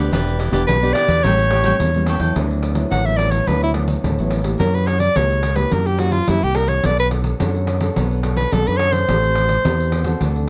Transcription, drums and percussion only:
0.13 pandeiro medium
0.27 pandeiro soft
0.40 pandeiro medium
0.53 pandeiro medium
0.69 pandeiro medium
0.83 pandeiro soft
0.95 pandeiro medium
1.08 pandeiro medium
1.24 pandeiro medium
1.39 pandeiro soft
1.50 pandeiro medium
1.64 pandeiro medium
1.80 pandeiro medium
1.94 pandeiro soft
2.06 pandeiro medium
2.20 pandeiro medium
2.36 pandeiro medium
2.51 pandeiro soft
2.63 pandeiro medium
2.75 pandeiro medium
2.91 pandeiro medium
3.06 pandeiro soft
3.19 pandeiro medium
3.31 pandeiro medium
3.47 pandeiro medium
3.62 pandeiro soft
3.74 pandeiro medium
3.88 pandeiro medium
4.04 pandeiro medium
4.19 pandeiro soft
4.31 pandeiro medium
4.44 pandeiro medium
4.60 pandeiro medium
4.75 pandeiro soft
4.87 pandeiro medium
5.00 pandeiro medium
5.16 pandeiro medium
5.31 pandeiro soft
5.43 pandeiro medium
5.56 pandeiro medium
5.71 pandeiro medium
5.87 pandeiro soft
5.99 pandeiro medium
6.12 pandeiro medium
6.28 pandeiro medium
6.43 pandeiro soft
6.55 pandeiro medium
6.68 pandeiro medium
6.84 pandeiro medium
6.99 pandeiro soft
7.11 pandeiro medium
7.24 pandeiro medium
7.40 pandeiro medium
7.55 pandeiro soft
7.67 pandeiro medium
7.81 pandeiro medium
7.96 pandeiro medium
8.11 pandeiro soft
8.23 pandeiro medium
8.37 pandeiro medium
8.52 pandeiro medium
8.67 pandeiro soft
8.79 pandeiro medium
8.93 pandeiro medium
9.08 pandeiro medium
9.23 pandeiro soft
9.35 pandeiro medium
9.49 pandeiro medium
9.65 pandeiro medium
9.80 pandeiro soft
9.92 pandeiro medium
10.04 pandeiro medium
10.21 pandeiro medium
10.36 pandeiro soft

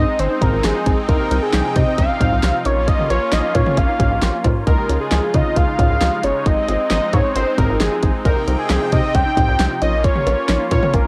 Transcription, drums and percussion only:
0.19 closed hi-hat medium
0.41 kick loud
0.41 closed hi-hat medium
0.41 mid tom medium
0.64 snare loud
0.64 closed hi-hat medium
0.86 kick loud
0.86 closed hi-hat medium
1.09 kick loud
1.09 closed hi-hat medium
1.31 closed hi-hat medium
1.53 snare loud
1.53 closed hi-hat medium
1.76 kick loud
1.76 closed hi-hat medium
1.98 kick loud
1.98 closed hi-hat medium
2.21 kick loud
2.21 closed hi-hat medium
2.21 mid tom medium
2.43 snare loud
2.43 closed hi-hat medium
2.65 closed hi-hat medium
2.88 kick loud
2.88 closed hi-hat medium
2.99 mid tom medium
3.10 closed hi-hat medium
3.10 cowbell medium
3.32 snare loud
3.32 closed hi-hat medium
3.55 kick loud
3.55 closed hi-hat medium
3.55 cowbell medium
3.66 mid tom loud
3.77 kick loud
3.77 closed hi-hat medium
4.00 kick loud
4.00 closed hi-hat medium
4.00 mid tom medium
4.22 snare loud
4.22 closed hi-hat medium
4.44 kick loud
4.44 closed hi-hat medium
4.44 mid tom loud
4.44 cowbell medium
4.67 kick loud
4.67 closed hi-hat medium
4.89 closed hi-hat medium
5.11 snare loud
5.11 closed hi-hat medium
5.34 kick loud
5.34 closed hi-hat medium
5.56 kick loud
5.56 closed hi-hat medium
5.79 kick loud
5.79 closed hi-hat medium
5.79 mid tom medium
6.01 snare loud
6.01 closed hi-hat medium
6.23 closed hi-hat medium
6.46 kick loud
6.46 closed hi-hat medium
6.69 closed hi-hat medium
6.90 snare loud
6.90 closed hi-hat medium
7.13 kick loud
7.13 closed hi-hat medium
7.36 closed hi-hat medium
7.58 kick loud
7.58 closed hi-hat medium
7.58 mid tom medium
7.80 snare loud
7.80 closed hi-hat medium
8.03 kick loud
8.03 closed hi-hat medium
8.25 kick loud
8.25 closed hi-hat medium
8.48 closed hi-hat medium
8.70 snare loud
8.70 closed hi-hat medium
8.92 kick loud
8.92 closed hi-hat medium
9.15 kick loud
9.15 closed hi-hat medium
9.37 kick loud
9.37 closed hi-hat medium
9.37 mid tom medium
9.59 snare loud
9.59 closed hi-hat medium
9.82 closed hi-hat medium
10.04 kick loud
10.04 closed hi-hat medium
10.16 mid tom medium
10.27 closed hi-hat medium
10.27 cowbell medium
10.49 snare loud
10.49 closed hi-hat medium
10.71 kick loud
10.71 closed hi-hat medium
10.71 cowbell medium
10.83 mid tom loud
10.94 kick loud
10.94 closed hi-hat medium

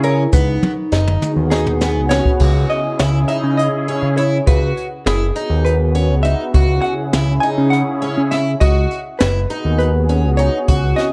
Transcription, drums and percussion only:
0.03 closed hi-hat medium
0.33 kick loud
0.33 closed hi-hat medium
0.33 shaker medium
0.63 high tom medium
0.93 snare medium
1.07 mid tom medium
1.22 mid tom medium
1.22 shaker soft
1.51 snare medium
1.66 mid tom medium
1.81 snare medium
1.81 shaker soft
2.11 snare medium
2.11 shaker soft
2.25 kick medium
2.40 kick medium
2.40 crash medium
2.70 closed hi-hat soft
2.99 snare loud
2.99 closed hi-hat medium
3.29 closed hi-hat soft
3.59 closed hi-hat medium
3.88 closed hi-hat soft
4.18 closed hi-hat medium
4.47 kick medium
4.47 closed hi-hat medium
4.77 closed hi-hat medium
5.07 snare medium
5.07 closed hi-hat medium
5.36 closed hi-hat medium
5.66 closed hi-hat medium
5.95 closed hi-hat medium
6.25 closed hi-hat medium
6.54 kick medium
6.54 closed hi-hat medium
6.84 closed hi-hat soft
7.13 snare medium
7.13 closed hi-hat medium
7.43 closed hi-hat soft
7.73 snare soft
7.73 closed hi-hat medium
8.02 closed hi-hat soft
8.32 snare soft
8.32 closed hi-hat medium
8.61 kick medium
8.61 closed hi-hat medium
8.91 closed hi-hat medium
9.21 snare medium
9.21 closed hi-hat medium
9.50 closed hi-hat medium
9.80 closed hi-hat medium
10.09 closed hi-hat soft
10.38 closed hi-hat medium
10.68 kick medium
10.68 closed hi-hat medium
10.98 snare soft
10.98 closed hi-hat medium

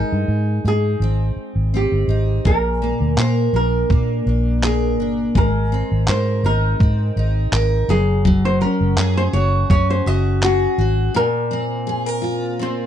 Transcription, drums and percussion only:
2.45 kick loud
3.18 clap loud
3.90 kick loud
4.63 clap medium
5.35 kick loud
6.08 clap loud
6.80 kick loud
7.53 clap medium
8.25 kick loud
8.98 clap loud
9.70 kick loud
10.43 clap medium

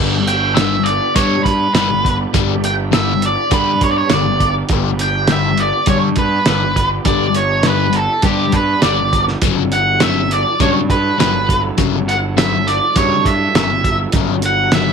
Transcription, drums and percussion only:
0.27 closed hi-hat medium
0.57 snare loud
0.57 closed hi-hat loud
0.86 closed hi-hat medium
1.16 kick loud
1.16 closed hi-hat loud
1.45 kick medium
1.45 closed hi-hat medium
1.75 snare loud
1.75 closed hi-hat loud
2.05 kick medium
2.05 closed hi-hat medium
2.34 kick loud
2.34 closed hi-hat loud
2.64 closed hi-hat medium
2.93 snare loud
2.93 closed hi-hat loud
3.22 closed hi-hat medium
3.51 kick loud
3.51 closed hi-hat medium
3.81 kick medium
3.81 closed hi-hat medium
4.10 snare loud
4.10 closed hi-hat medium
4.40 kick medium
4.40 closed hi-hat medium
4.69 kick loud
4.69 closed hi-hat medium
4.99 closed hi-hat medium
5.27 snare loud
5.27 closed hi-hat loud
5.58 closed hi-hat medium
5.86 kick loud
5.86 closed hi-hat loud
6.16 kick medium
6.16 closed hi-hat medium
6.46 snare loud
6.46 closed hi-hat loud
6.76 kick medium
6.76 closed hi-hat medium
7.05 kick loud
7.05 closed hi-hat medium
7.35 closed hi-hat medium
7.63 snare loud
7.63 closed hi-hat loud
7.93 closed hi-hat medium
8.22 kick loud
8.22 closed hi-hat medium
8.52 kick medium
8.52 closed hi-hat medium
8.82 snare loud
8.82 closed hi-hat loud
9.13 kick medium
9.13 closed hi-hat medium
9.28 snare soft
9.42 kick loud
9.42 closed hi-hat medium
9.72 closed hi-hat medium
10.00 snare loud
10.00 closed hi-hat loud
10.31 closed hi-hat medium
10.60 kick loud
10.60 closed hi-hat medium
10.90 kick medium
10.90 closed hi-hat medium
11.20 snare loud
11.20 closed hi-hat loud
11.49 kick medium
11.49 closed hi-hat medium
11.78 kick loud
11.78 closed hi-hat loud
12.09 closed hi-hat medium
12.38 snare loud
12.38 closed hi-hat loud
12.68 closed hi-hat medium
12.96 kick loud
12.96 closed hi-hat loud
13.25 kick medium
13.25 closed hi-hat medium
13.55 snare loud
13.55 closed hi-hat loud
13.84 kick medium
13.84 closed hi-hat medium
14.12 kick loud
14.12 closed hi-hat loud
14.42 closed hi-hat medium
14.72 snare loud
14.72 closed hi-hat loud

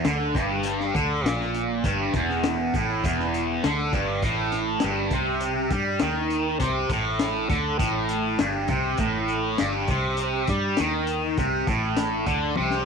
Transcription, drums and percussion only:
0.05 snare loud
0.05 closed hi-hat medium
0.35 kick loud
0.35 closed hi-hat medium
0.63 closed hi-hat loud
0.80 snare soft
0.95 kick loud
0.95 closed hi-hat medium
1.26 snare loud
1.26 closed hi-hat loud
1.41 snare soft
1.54 closed hi-hat medium
1.84 kick loud
1.84 closed hi-hat medium
2.13 kick loud
2.13 snare soft
2.13 closed hi-hat medium
2.30 snare soft
2.44 snare loud
2.44 closed hi-hat medium
2.74 kick loud
2.74 closed hi-hat medium
3.04 kick loud
3.04 closed hi-hat loud
3.19 snare soft
3.34 closed hi-hat medium
3.64 snare loud
3.64 closed hi-hat medium
3.93 kick loud
3.93 closed hi-hat medium
4.22 kick medium
4.22 closed hi-hat medium
4.52 snare soft
4.52 closed hi-hat medium
4.80 snare loud
4.80 closed hi-hat medium
5.11 kick loud
5.11 closed hi-hat medium
5.40 closed hi-hat medium
5.70 kick medium
5.70 closed hi-hat medium
6.00 snare loud
6.00 closed hi-hat medium
6.30 closed hi-hat medium
6.60 kick loud
6.60 closed hi-hat medium
6.90 kick loud
6.90 closed hi-hat medium
7.19 snare loud
7.19 closed hi-hat loud
7.50 kick loud
7.50 closed hi-hat medium
7.79 kick loud
7.79 closed hi-hat loud
8.09 closed hi-hat medium
8.39 snare loud
8.39 closed hi-hat medium
8.68 kick loud
8.68 closed hi-hat medium
8.97 kick medium
8.97 closed hi-hat medium
9.28 closed hi-hat medium
9.58 snare loud
9.58 closed hi-hat medium
9.88 kick loud
9.88 closed hi-hat medium
10.17 closed hi-hat medium
10.47 kick medium
10.47 closed hi-hat medium
10.77 snare loud
10.77 closed hi-hat medium
11.07 closed hi-hat medium
11.37 kick medium
11.37 closed hi-hat medium
11.67 kick loud
11.67 closed hi-hat medium
11.97 snare loud
11.97 closed hi-hat loud
12.26 kick loud
12.26 closed hi-hat medium
12.56 high tom medium
12.71 snare medium

